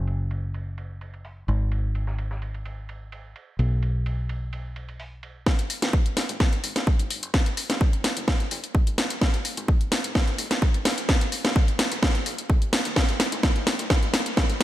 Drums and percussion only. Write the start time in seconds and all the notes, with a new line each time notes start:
0.07 ride
0.31 ride
0.54 ride
0.78 ride
1.01 ride
1.14 ride
1.25 open hi-hat
1.48 ride
1.72 ride
1.95 ride
2.07 snare
2.19 ride
2.31 snare
2.42 ride
2.54 ride
2.66 ride
2.89 ride
3.12 ride
3.36 ride
3.59 ride
3.83 ride
4.06 ride
4.29 ride
4.53 ride
4.76 ride
4.89 ride
5.00 open hi-hat
5.23 ride
5.46 kick, snare
5.59 closed hi-hat
5.70 open hi-hat
5.82 snare, closed hi-hat
5.93 kick
6.06 closed hi-hat
6.17 snare, open hi-hat
6.29 closed hi-hat
6.40 kick, snare
6.53 closed hi-hat
6.64 open hi-hat
6.76 snare, closed hi-hat
6.87 kick
6.99 closed hi-hat
7.10 open hi-hat
7.23 closed hi-hat
7.34 kick, snare
7.46 closed hi-hat
7.57 open hi-hat
7.70 snare, closed hi-hat
7.81 kick
7.93 closed hi-hat
8.04 snare, open hi-hat
8.17 closed hi-hat
8.28 kick, snare
8.40 closed hi-hat
8.51 open hi-hat
8.64 closed hi-hat
8.75 kick
8.87 closed hi-hat
8.98 snare, open hi-hat
9.10 closed hi-hat
9.21 kick, snare
9.34 closed hi-hat
9.45 open hi-hat
9.57 closed hi-hat
9.68 kick
9.81 closed hi-hat
9.92 snare, open hi-hat
10.04 closed hi-hat
10.15 kick, snare
10.28 closed hi-hat
10.38 open hi-hat
10.51 snare, closed hi-hat
10.62 kick
10.74 closed hi-hat
10.85 snare, open hi-hat
10.98 closed hi-hat
11.09 kick, snare
11.21 closed hi-hat
11.32 open hi-hat
11.45 snare, closed hi-hat
11.56 kick
11.68 closed hi-hat
11.79 snare, open hi-hat
11.92 closed hi-hat
12.03 kick, snare
12.15 closed hi-hat
12.26 open hi-hat
12.38 closed hi-hat
12.50 kick
12.62 closed hi-hat
12.73 snare, open hi-hat
12.85 closed hi-hat
12.96 kick, snare
13.09 closed hi-hat
13.20 snare, open hi-hat
13.32 closed hi-hat
13.43 kick, snare
13.56 closed hi-hat
13.67 snare, open hi-hat
13.79 closed hi-hat
13.90 kick, snare
14.03 closed hi-hat
14.14 snare, open hi-hat
14.26 closed hi-hat
14.37 kick, snare
14.50 closed hi-hat